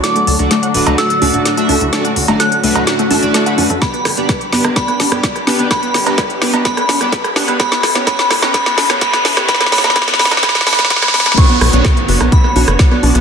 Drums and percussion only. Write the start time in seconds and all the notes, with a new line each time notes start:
0.04 snare, closed hi-hat
0.16 closed hi-hat
0.27 open hi-hat
0.39 closed hi-hat
0.51 snare, closed hi-hat
0.63 closed hi-hat
0.74 open hi-hat
0.87 closed hi-hat, cowbell
0.98 snare, closed hi-hat
1.10 closed hi-hat
1.22 open hi-hat, high conga
1.34 closed hi-hat
1.46 snare, closed hi-hat
1.57 closed hi-hat
1.69 open hi-hat, high conga
1.81 closed hi-hat
1.93 snare, closed hi-hat
2.05 closed hi-hat
2.16 open hi-hat
2.28 closed hi-hat, cowbell
2.40 snare, closed hi-hat
2.52 closed hi-hat
2.64 open hi-hat
2.75 closed hi-hat, cowbell
2.87 snare, closed hi-hat
2.99 closed hi-hat
3.11 open hi-hat, high conga
3.23 closed hi-hat
3.34 snare, closed hi-hat
3.46 closed hi-hat
3.58 open hi-hat, high conga
3.70 closed hi-hat
3.82 kick, cross-stick, snare, closed hi-hat
3.94 closed hi-hat
4.05 cross-stick, snare, open hi-hat
4.17 closed hi-hat
4.29 kick, cross-stick, snare, closed hi-hat
4.41 closed hi-hat
4.53 snare, open hi-hat
4.65 cross-stick, closed hi-hat, cowbell
4.76 kick, snare, closed hi-hat
4.88 cross-stick, closed hi-hat
5.00 snare, open hi-hat, high conga
5.12 cross-stick, closed hi-hat
5.23 kick, snare, closed hi-hat
5.36 cross-stick, closed hi-hat
5.47 snare, open hi-hat, high conga
5.59 closed hi-hat
5.71 kick, cross-stick, snare, closed hi-hat
5.83 closed hi-hat
5.94 cross-stick, snare, open hi-hat
6.06 closed hi-hat, cowbell
6.18 kick, cross-stick, snare, closed hi-hat
6.30 closed hi-hat
6.42 cross-stick, snare, open hi-hat
6.54 closed hi-hat, cowbell
6.65 kick, snare, closed hi-hat
6.77 cross-stick, closed hi-hat
6.89 snare, open hi-hat, high conga
7.01 cross-stick, closed hi-hat
7.12 kick, snare, closed hi-hat
7.24 cross-stick, closed hi-hat
7.36 snare, open hi-hat, high conga
7.48 cross-stick, closed hi-hat
7.60 kick, snare, closed hi-hat
7.72 snare, closed hi-hat
7.83 cross-stick, snare, open hi-hat
7.95 snare, closed hi-hat
8.07 kick, cross-stick, snare, closed hi-hat
8.19 snare, closed hi-hat
8.30 cross-stick, snare, open hi-hat
8.42 snare, closed hi-hat, cowbell
8.54 kick, cross-stick, snare, closed hi-hat
8.66 snare, closed hi-hat
8.78 snare, open hi-hat, high conga
8.90 cross-stick, snare, closed hi-hat
9.01 kick, snare, closed hi-hat
9.13 cross-stick, snare, closed hi-hat
9.25 snare, open hi-hat, high conga
9.37 cross-stick, snare, closed hi-hat
9.49 kick, snare, closed hi-hat
9.55 snare
9.61 cross-stick, snare, closed hi-hat
9.66 snare
9.72 snare, open hi-hat
9.78 snare
9.84 snare, closed hi-hat, cowbell
9.90 snare
9.96 kick, cross-stick, snare, closed hi-hat
10.02 snare
10.08 snare, closed hi-hat
10.14 snare
10.19 cross-stick, snare, open hi-hat
10.25 snare
10.31 snare, closed hi-hat, cowbell
10.37 snare
10.43 kick, cross-stick, snare, closed hi-hat
10.49 snare
10.55 snare, closed hi-hat
10.61 snare
10.67 cross-stick, snare, open hi-hat, high conga
10.73 snare
10.79 snare, closed hi-hat
10.85 snare
10.90 kick, snare, closed hi-hat
10.96 snare
11.02 kick, cross-stick, snare, closed hi-hat
11.08 snare
11.14 snare, open hi-hat, high conga
11.20 snare
11.26 cross-stick, snare, closed hi-hat, high conga
11.32 snare
11.38 kick, cross-stick, closed hi-hat, crash
11.61 cross-stick, open hi-hat
11.73 closed hi-hat
11.85 kick, cross-stick, snare, closed hi-hat
11.97 closed hi-hat
12.09 open hi-hat
12.21 cross-stick, cowbell
12.32 kick, closed hi-hat
12.44 cross-stick
12.56 open hi-hat, high conga
12.68 cross-stick, closed hi-hat
12.79 kick, snare, closed hi-hat
12.91 cross-stick
13.03 open hi-hat, high conga
13.15 closed hi-hat